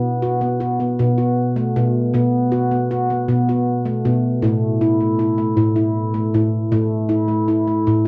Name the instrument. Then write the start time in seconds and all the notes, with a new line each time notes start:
handpan
Already playing: B2 B3
0.22 F#4
0.41 B3
0.60 F#4
0.80 B3
0.99 B2
1.18 F#4
1.56 A3
1.76 B2
2.14 B2 B3
2.52 F#4
2.71 B3
2.91 F#4
3.10 B3
3.29 B2
3.49 F#4
3.85 A3
4.05 B2
4.42 A2 A3
4.81 E4
5.00 A3
5.19 E4
5.38 A3
5.57 A2
5.76 E4
6.14 A3
6.34 A2
6.72 A2 A3
7.09 E4
7.28 A3
7.48 E4
7.67 A3
7.87 A2